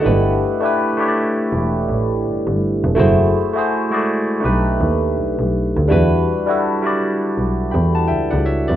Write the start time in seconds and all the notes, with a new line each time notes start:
Already playing: D#5 F#5
0.01 A3 D4 E4 G4
0.06 G1 B4
0.60 A3 D4 E4 G4
0.66 B4
0.97 A3 D4 E4 G4
1.02 C#5
1.08 D5
1.53 E1
1.89 A1
2.26 G1
2.47 G1
2.84 E1
2.95 F#1 A3 E4 F#4 G#4
3.00 C5
3.53 A3 E4 F#4 G#4
3.59 C5
3.90 G#3 E4 F#4 G#4
3.94 A3 D5
4.40 A3 D4 D#4 G4
4.45 B1 B4
4.81 D#2
5.17 B1
5.39 B1
5.77 D2
5.88 G3 D4 E4 F#4
5.92 E2 B4
6.46 G3 D4 E4 F#4
6.50 A4
6.82 G3 D4 E4 F#4
6.87 D5
7.38 B1
7.71 E2 G5 B5
7.95 F#5 A5
8.08 C#2 E5 G5
8.31 C#2 D5 F#5
8.46 C#5 E5
8.68 E2 B4 D5